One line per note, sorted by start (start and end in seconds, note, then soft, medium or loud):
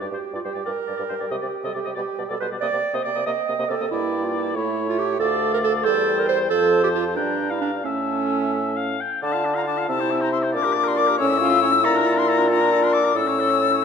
0.00 0.06 G2 medium
0.00 0.06 G3 medium
0.00 0.33 G4 medium
0.00 0.05 D5 medium
0.00 2.34 G5 soft
0.11 0.17 G2 soft
0.11 0.17 G3 soft
0.11 0.18 C5 soft
0.33 0.38 G2 medium
0.33 0.39 G3 medium
0.33 0.44 F4 medium
0.33 0.40 D5 medium
0.45 0.50 G2 soft
0.45 0.50 G3 soft
0.45 0.65 G4 medium
0.45 0.50 C5 soft
0.55 0.60 G2 soft
0.55 0.61 G3 soft
0.55 0.60 D5 soft
0.65 0.72 G2 medium
0.65 0.72 G3 medium
0.65 1.32 A#4 medium
0.65 0.70 D5 medium
0.87 0.93 G2 soft
0.87 0.94 G3 soft
0.87 0.92 D5 soft
0.97 1.04 G2 medium
0.97 1.05 G3 medium
0.97 1.02 D5 medium
1.09 1.15 G2 soft
1.09 1.16 G3 soft
1.09 1.14 C5 soft
1.20 1.26 G2 soft
1.20 1.27 G3 soft
1.20 1.25 D5 soft
1.31 1.36 C3 medium
1.31 1.39 G3 medium
1.31 1.64 G4 medium
1.31 1.36 D#5 medium
1.42 1.47 C3 soft
1.42 1.49 G3 soft
1.42 1.47 D5 soft
1.64 1.69 C3 medium
1.64 1.70 G3 medium
1.64 1.74 A4 medium
1.64 1.69 D#5 medium
1.74 1.80 C3 soft
1.74 1.81 G3 soft
1.74 1.96 G4 medium
1.74 1.79 D5 soft
1.85 1.91 C3 soft
1.85 1.92 G3 soft
1.85 1.90 D#5 soft
1.95 2.02 B2 medium
1.95 2.03 G3 medium
1.95 2.32 G4 medium
1.95 2.00 D5 medium
2.18 2.23 B2 soft
2.18 2.25 G3 soft
2.18 2.23 D5 soft
2.30 2.35 B2 medium
2.30 2.36 G3 medium
2.30 2.40 A4 medium
2.30 2.35 D5 medium
2.40 2.46 B2 soft
2.40 2.46 G3 soft
2.40 2.50 B4 medium
2.40 2.46 C5 soft
2.52 2.57 B2 soft
2.52 2.57 G3 soft
2.52 2.56 D5 medium
2.61 2.67 C3 medium
2.61 2.67 A#3 medium
2.61 2.96 D5 medium
2.61 2.67 D#5 medium
2.61 3.89 G5 medium
2.72 2.78 C3 soft
2.72 2.79 A#3 soft
2.72 2.77 D5 soft
2.93 2.98 C3 medium
2.93 2.99 A#3 medium
2.93 3.05 C5 medium
2.93 2.99 D#5 medium
3.04 3.11 C3 soft
3.04 3.10 A#3 soft
3.04 3.09 D5 soft
3.04 3.26 D5 medium
3.15 3.21 C3 medium
3.15 3.20 A#3 medium
3.15 3.20 D#5 soft
3.26 3.31 C3 medium
3.26 3.32 A#3 medium
3.26 3.31 D#5 medium
3.26 3.71 D#5 medium
3.48 3.53 C3 soft
3.48 3.54 A#3 medium
3.48 3.53 D#5 soft
3.59 3.64 C3 medium
3.59 3.64 A#3 medium
3.59 3.64 D#5 medium
3.69 3.75 C3 medium
3.69 3.75 A#3 medium
3.69 3.91 A4 medium
3.69 3.75 D5 medium
3.80 3.86 C3 medium
3.80 3.86 A#3 medium
3.80 3.85 D#5 medium
3.91 4.57 G2 medium
3.91 4.57 A#3 medium
3.91 4.26 E4 medium
3.91 4.57 D5 medium
3.91 4.52 G5 medium
4.24 4.36 F4 medium
4.35 4.56 E4 medium
4.55 5.19 A2 medium
4.55 5.19 A3 medium
4.55 4.87 E4 medium
4.55 5.19 C#5 medium
4.55 5.19 E5 medium
4.89 5.00 F4 medium
4.98 5.19 G4 loud
5.19 5.86 D2 medium
5.19 5.87 A3 medium
5.19 5.52 A4 loud
5.19 5.85 D5 medium
5.19 5.86 F5 medium
5.54 5.58 A#4 medium
5.64 5.73 A4 loud
5.84 6.50 E2 medium
5.84 6.51 G3 medium
5.84 6.20 A4 loud
5.84 6.50 C5 medium
5.84 6.50 G5 medium
6.19 6.28 A#4 medium
6.29 6.38 C5 medium
6.49 7.18 F2 medium
6.49 7.18 F3 medium
6.49 6.83 A4 loud
6.49 7.16 C5 medium
6.49 7.18 A5 medium
6.84 6.89 G4 medium
6.94 7.04 F4 medium
7.16 7.85 G2 medium
7.16 7.49 D4 medium
7.16 7.87 D4 medium
7.16 7.52 G5 medium
7.16 7.83 A#5 medium
7.50 7.61 E4 medium
7.50 7.84 F5 medium
7.62 7.72 D4 medium
7.84 8.98 A2 medium
7.84 9.01 A3 medium
7.84 8.98 C#4 medium
7.84 8.48 E5 medium
7.84 8.97 A5 medium
8.53 8.78 E5 medium
8.76 9.02 F5 medium
9.00 9.22 G5 medium
9.22 9.85 D3 medium
9.22 9.36 D4 medium
9.22 9.34 D5 medium
9.22 9.53 A5 loud
9.32 9.46 F4 medium
9.32 9.47 F5 medium
9.44 9.56 D4 medium
9.44 9.56 D5 medium
9.55 9.66 F4 medium
9.55 9.66 F5 medium
9.55 9.61 A#5 medium
9.66 9.79 D4 medium
9.66 9.80 D5 medium
9.66 9.87 A5 loud
9.78 9.89 F4 medium
9.78 9.88 F5 medium
9.88 10.56 C3 medium
9.88 10.01 C4 medium
9.88 10.57 E4 medium
9.88 10.02 E5 medium
9.88 10.21 A5 loud
10.00 10.12 E4 medium
10.00 10.12 C5 medium
10.10 10.24 C4 medium
10.10 10.22 E5 medium
10.21 10.32 E4 medium
10.21 10.32 C5 medium
10.21 10.31 A#5 medium
10.32 10.46 C4 medium
10.32 10.44 E5 medium
10.32 10.38 C6 loud
10.43 10.55 E4 medium
10.43 10.52 C5 medium
10.52 11.21 A#2 medium
10.52 11.19 D4 loud
10.52 10.67 A#4 medium
10.52 10.65 D5 medium
10.52 10.89 D6 loud
10.63 10.79 G4 medium
10.63 10.74 A#4 medium
10.73 10.85 D5 medium
10.77 10.88 A#4 medium
10.84 10.97 G4 medium
10.84 10.95 A#4 medium
10.84 10.99 C6 loud
10.95 11.10 A#4 medium
10.95 11.08 D5 medium
10.95 11.18 D6 loud
11.07 11.19 G4 medium
11.07 11.17 A#4 medium
11.17 11.86 A2 loud
11.17 11.32 C#4 medium
11.17 11.40 C#4 loud
11.17 11.30 C#5 medium
11.17 11.86 E6 loud
11.28 11.43 E4 medium
11.28 11.39 E5 medium
11.38 11.63 F4 loud
11.38 11.51 C#5 medium
11.42 11.55 C#4 medium
11.50 11.63 E4 medium
11.50 11.60 E5 medium
11.61 11.75 C#4 medium
11.61 12.52 E4 medium
11.61 11.74 C#5 medium
11.72 11.83 E4 medium
11.72 11.83 E5 medium
11.84 13.14 A#2 loud
11.84 11.96 F4 medium
11.84 11.98 A4 medium
11.84 12.19 A#5 loud
11.95 12.07 D4 medium
11.95 12.08 A#4 medium
12.05 12.18 F4 medium
12.05 12.19 A4 medium
12.16 12.27 D4 medium
12.16 12.26 A#4 medium
12.16 12.30 C6 loud
12.27 12.40 F4 medium
12.27 12.40 A4 medium
12.27 12.49 A#5 loud
12.38 12.51 D4 medium
12.38 12.49 A#4 medium
12.48 13.16 D4 loud
12.48 12.62 F4 medium
12.48 12.61 A4 medium
12.48 12.85 A#5 loud
12.60 12.71 D4 medium
12.60 12.71 A#4 medium
12.71 12.84 F4 medium
12.71 12.84 A4 medium
12.82 12.95 D4 medium
12.82 12.94 A#4 medium
12.82 12.95 C6 loud
12.93 13.07 F4 medium
12.93 13.06 A4 medium
12.93 13.18 D6 loud
13.04 13.15 D4 medium
13.04 13.14 A#4 medium
13.14 13.85 A2 medium
13.14 13.85 C#4 medium
13.14 13.28 E4 medium
13.14 13.29 A4 medium
13.14 13.85 E6 loud
13.27 13.39 C#4 medium
13.27 13.41 C#5 medium
13.37 13.50 E4 medium
13.37 13.51 A4 medium
13.48 13.60 C#4 medium
13.48 13.61 C#5 medium
13.60 13.73 E4 medium
13.60 13.74 A4 medium
13.71 13.84 C#4 medium
13.71 13.84 C#5 medium